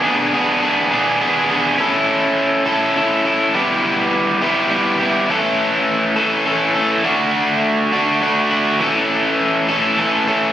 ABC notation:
X:1
M:6/8
L:1/8
Q:3/8=68
K:Bdor
V:1 name="Overdriven electric guitar"
[B,DG] [B,DG] [B,DG] [B,DG] [B,DG] [B,DG] | [K:Amix] [CEA]3 [CEA] [CEA] [EA] | [G,B,EG]3 [G,B,EG] [G,B,EG] [B,EG] | [E,A,CA]3 [E,A,CA] [E,A,CA] [A,CA] |
[A,DF]3 [A,DF] [A,DF] [DF] | [E,A,CA]3 [E,A,CA] [E,A,CA] [A,CA] |]